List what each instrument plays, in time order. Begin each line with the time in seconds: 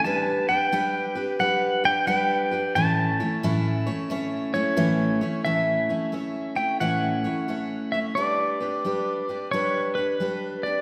0.04 steel-string acoustic guitar G3 D4 G4 B4, pedal steel guitar A5
0.49 steel-string acoustic guitar D4 G4 B4, pedal steel guitar G5
0.72 steel-string acoustic guitar G3 D4 G4 B4
1.15 steel-string acoustic guitar D4 G4 B4
1.39 steel-string acoustic guitar G3 D4 G4 B4, pedal steel guitar F#5
1.84 steel-string acoustic guitar D4 G4 B4, pedal steel guitar G5
2.07 steel-string acoustic guitar G3 D4 G4 B4, pedal steel guitar G5
2.51 steel-string acoustic guitar D4 G4 B4
2.75 steel-string acoustic guitar A2 E3 A3 C#4 E4 C#5, pedal steel guitar A5
3.20 steel-string acoustic guitar A3 C#4 E4 C#5
3.43 steel-string acoustic guitar A2 E3 A3 C#4 E4 C#5
3.87 steel-string acoustic guitar A3 C#4 E4 C#5
4.10 steel-string acoustic guitar A3 C#4 E4 C#5
4.54 steel-string acoustic guitar A3 C#4 E4 C#5, pedal steel guitar C#5
4.77 steel-string acoustic guitar A2 E3 A3 C#4 E4 C#5
5.21 steel-string acoustic guitar A3 C#4 E4 C#5
5.45 steel-string acoustic guitar A2 E3 A3 C#4 E4 C#5, pedal steel guitar E5
5.89 steel-string acoustic guitar A3 C#4 E4 C#5
6.12 steel-string acoustic guitar A3 C#4 E4 C#5
6.55 steel-string acoustic guitar A3 C#4 E4 C#5, pedal steel guitar G5
6.80 steel-string acoustic guitar A2 E3 A3 C#4 E4 C#5, pedal steel guitar F#5
7.24 steel-string acoustic guitar A3 C#4 E4 C#5
7.48 steel-string acoustic guitar A3 C#4 E4 C#5
7.92 steel-string acoustic guitar A3 C#4 E4 C#5, pedal steel guitar E5
8.15 steel-string acoustic guitar G3 D4 G4 B4, pedal steel guitar D5
8.60 steel-string acoustic guitar D4 G4 B4
8.85 steel-string acoustic guitar G3 D4 G4 B4
9.29 steel-string acoustic guitar D4 G4 B4
9.51 steel-string acoustic guitar G3 D4 G4 B4, pedal steel guitar C#5
9.95 steel-string acoustic guitar D4 G4 B4, pedal steel guitar B4
10.20 steel-string acoustic guitar G3 D4 G4 B4
10.63 steel-string acoustic guitar G4 B4, pedal steel guitar D5
10.68 steel-string acoustic guitar D4